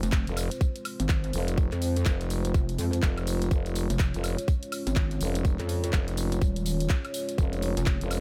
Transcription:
Already playing: analog synth pad G#3 C4 F4 C5
0.03 wobble bass F1, closed hi-hat, tambourine
0.12 kick, clap, tambourine
0.27 fm bass F1, closed hi-hat, tambourine
0.37 open hi-hat, tambourine, high woodblock
0.51 closed hi-hat, tambourine
0.61 kick, tambourine
0.76 closed hi-hat, tambourine
0.85 open hi-hat, tambourine, high woodblock
1.00 wobble bass G#1, closed hi-hat, tambourine
1.09 kick, clap, tambourine
1.24 closed hi-hat, tambourine
1.33 fm bass F1, open hi-hat, tambourine
1.48 closed hi-hat, tambourine
1.58 kick, tambourine
1.72 wobble bass F2, clap, closed hi-hat, tambourine
1.82 open hi-hat, tambourine
1.96 closed hi-hat, tambourine
2.06 fm bass F1, kick, clap, tambourine
2.21 closed hi-hat, tambourine
2.30 open hi-hat, tambourine
2.45 closed hi-hat, tambourine
2.54 wobble bass F1, kick, tambourine
2.69 closed hi-hat, tambourine
2.78 wobble bass F2, open hi-hat, tambourine
2.93 closed hi-hat, tambourine
3.02 fm bass F1, kick, clap, tambourine
3.18 closed hi-hat, tambourine, high woodblock
3.27 open hi-hat, tambourine
3.42 closed hi-hat, tambourine
3.51 fm bass F1, analog synth pad C#4 C#5, kick, tambourine
3.66 closed hi-hat, tambourine
3.75 open hi-hat, tambourine
3.90 wobble bass F1, closed hi-hat, tambourine
3.99 kick, clap, tambourine
4.14 fm bass F1, closed hi-hat, tambourine
4.24 open hi-hat, tambourine, high woodblock
4.38 closed hi-hat, tambourine
4.48 kick, tambourine
4.63 closed hi-hat, tambourine
4.72 open hi-hat, tambourine, high woodblock
4.87 wobble bass G#1, closed hi-hat, tambourine
4.96 kick, clap, tambourine
5.11 closed hi-hat, tambourine
5.20 fm bass F1, open hi-hat, tambourine
5.35 closed hi-hat, tambourine
5.45 kick, tambourine
5.59 wobble bass F2, clap, closed hi-hat, tambourine
5.69 open hi-hat, tambourine
5.84 closed hi-hat, tambourine
5.93 fm bass F1, kick, clap, tambourine
6.08 closed hi-hat, tambourine
6.17 open hi-hat, tambourine
6.32 closed hi-hat, tambourine
6.42 wobble bass D#1, kick, tambourine
6.56 closed hi-hat, tambourine
6.66 open hi-hat, tambourine
6.80 closed hi-hat, tambourine
6.89 kick, clap, tambourine
7.05 closed hi-hat, tambourine, high woodblock
7.14 open hi-hat, tambourine
7.29 closed hi-hat, tambourine
7.38 fm bass F1, kick, tambourine
7.53 closed hi-hat, tambourine
7.62 open hi-hat, tambourine
7.77 wobble bass F1, closed hi-hat, tambourine
7.86 kick, clap, tambourine
8.01 fm bass F1, closed hi-hat, tambourine
8.11 open hi-hat, tambourine, high woodblock

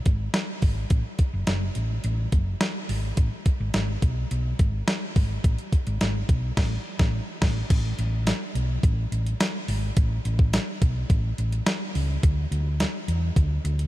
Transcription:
0.06 fingered electric bass G#1, kick, closed hi-hat
0.34 snare, closed hi-hat
0.62 fingered electric bass G#1, kick, open hi-hat
0.90 fingered electric bass A1, kick, closed hi-hat
1.19 kick, closed hi-hat
1.33 fingered electric bass F#1
1.47 fingered electric bass F#1, snare, closed hi-hat
1.75 fingered electric bass A1, closed hi-hat
2.04 fingered electric bass A1, closed hi-hat
2.32 fingered electric bass F#1, kick, closed hi-hat
2.61 snare, closed hi-hat
2.89 fingered electric bass G#1, open hi-hat
3.17 fingered electric bass A1, kick, closed hi-hat
3.46 kick, closed hi-hat
3.60 fingered electric bass G#1
3.74 fingered electric bass G#1, snare, closed hi-hat
4.02 fingered electric bass B1, kick, closed hi-hat
4.31 fingered electric bass B1, closed hi-hat
4.59 fingered electric bass G#1, kick, closed hi-hat
4.88 snare, closed hi-hat
5.16 fingered electric bass G#1, kick, open hi-hat
5.44 fingered electric bass A1, kick, closed hi-hat
5.58 closed hi-hat
5.73 kick, closed hi-hat
5.87 fingered electric bass G#1, closed hi-hat
6.01 fingered electric bass G#1, snare, closed hi-hat
6.29 fingered electric bass B1, kick, closed hi-hat
6.57 fingered electric bass A1, kick, snare, crash
6.99 fingered electric bass A1, kick, snare
7.42 fingered electric bass A1, kick, snare, crash
7.70 fingered electric bass A1, kick, closed hi-hat, crash
7.99 fingered electric bass A1, closed hi-hat
8.27 snare, closed hi-hat, tambourine
8.55 fingered electric bass B1, closed hi-hat
8.83 fingered electric bass A1, kick, closed hi-hat
9.12 fingered electric bass A1, closed hi-hat
9.27 closed hi-hat
9.40 snare, closed hi-hat, tambourine
9.68 fingered electric bass G#1, open hi-hat
9.97 fingered electric bass A1, kick, closed hi-hat
10.25 fingered electric bass A1, closed hi-hat
10.39 kick
10.53 snare, closed hi-hat, tambourine
10.82 fingered electric bass B1, kick, closed hi-hat
11.10 fingered electric bass A1, kick, closed hi-hat
11.38 fingered electric bass A1, closed hi-hat
11.52 closed hi-hat
11.66 snare, closed hi-hat, tambourine
11.95 fingered electric bass C#2, open hi-hat
12.23 fingered electric bass D2, kick, closed hi-hat
12.51 fingered electric bass D2, closed hi-hat
12.80 snare, closed hi-hat, tambourine
13.08 fingered electric bass E2, closed hi-hat
13.36 fingered electric bass D2, kick, closed hi-hat
13.64 fingered electric bass D2, closed hi-hat
13.79 closed hi-hat

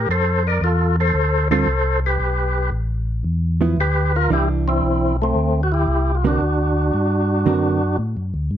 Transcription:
0.08 tonewheel organ F2 A4 C5
0.47 tonewheel organ A#4 D5
0.61 tonewheel organ E2 F4 A4
1.00 tonewheel organ A4 C5
1.14 tonewheel organ D2
1.51 hollow-body jazz guitar D3 G3 C4 F4, tonewheel organ A4 C5
1.66 tonewheel organ C2
2.06 tonewheel organ G4 B4
2.19 tonewheel organ B1
2.72 tonewheel organ A1
3.24 tonewheel organ E2
3.61 hollow-body jazz guitar F3 B3 E4
3.77 tonewheel organ D2 G4 B4
4.16 tonewheel organ F4 A#4
4.30 tonewheel organ C2 E4 G4, hollow-body jazz guitar E3 D4
4.68 tonewheel organ C4 E4
4.82 tonewheel organ B1
5.22 tonewheel organ A3 C4
5.34 tonewheel organ D2
5.63 tonewheel organ F#4
5.72 tonewheel organ E4 G4
5.87 tonewheel organ C2
6.15 tonewheel organ F4
6.24 hollow-body jazz guitar D3 A#3 C4 F#4, tonewheel organ D4
6.29 tonewheel organ F#4
6.40 tonewheel organ D2
6.94 tonewheel organ G2
7.46 tonewheel organ F#2, hollow-body jazz guitar D3 A#3 C4 F#4
7.98 tonewheel organ A2
8.17 tonewheel organ F#2
8.34 tonewheel organ D2
8.51 tonewheel organ G2

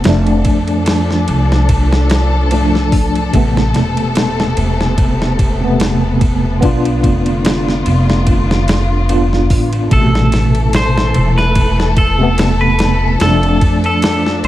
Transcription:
0.04 upright bass F1, string section F3 D4 A4, tine electric piano F3 A3, snare, ride
0.09 tine electric piano D4
0.27 ride
0.45 upright bass F2, kick, ride
0.68 ride
0.86 snare, ride
1.11 snare
1.28 upright bass C2, ride
1.52 snare
1.69 kick, ride
1.92 snare
2.10 snare, ride
2.51 tine electric piano F3 A3 D4, ride
2.75 snare
2.92 kick, open hi-hat
3.15 ride
3.33 upright bass A1, tine electric piano C3 A3, string section C3 B3, kick, ride
3.37 tine electric piano B3
3.57 snare
3.74 upright bass E1, snare, ride
3.97 ride
4.16 snare, ride
4.40 snare
4.57 upright bass E1, ride
4.81 snare
4.98 kick, ride
5.22 snare
5.39 kick, ride
5.60 tine electric piano C3 A3
5.64 tine electric piano B3
5.80 snare, ride
6.21 kick, ride
6.61 upright bass B1, string section D3 F4, tine electric piano B3 D4, kick, ride
6.65 tine electric piano F4
6.85 ride
7.03 upright bass F1, kick, ride
7.26 ride
7.45 snare, ride
7.69 snare
7.86 upright bass F1, ride
8.10 snare
8.27 kick, ride
8.51 snare
8.68 snare, ride
9.09 tine electric piano B3 D4 F4, ride
9.33 snare
9.50 upright bass A1, kick, open hi-hat
9.73 ride
9.89 upright bass A1, tine electric piano C3 A3, string section E3 A3 A4, clean electric guitar A4, kick, ride
9.94 tine electric piano B2
10.15 snare
10.32 snare, ride
10.55 ride
10.73 clean electric guitar C5, snare, ride
10.97 snare
11.14 upright bass E1, ride
11.38 clean electric guitar B4, snare
11.55 kick, ride
11.80 snare
11.97 clean electric guitar A4, kick, ride
12.19 tine electric piano C3 A3
12.23 tine electric piano B3
12.38 snare, ride
12.61 clean electric guitar B4
12.79 snare, ride
13.19 upright bass F1, tine electric piano F3 A3, string section F3 D4, clean electric guitar A4, snare, ride
13.23 tine electric piano D4
13.43 ride
13.61 upright bass F2, kick, ride
13.84 clean electric guitar A4, ride
14.02 snare, ride
14.26 snare
14.43 upright bass C2, ride

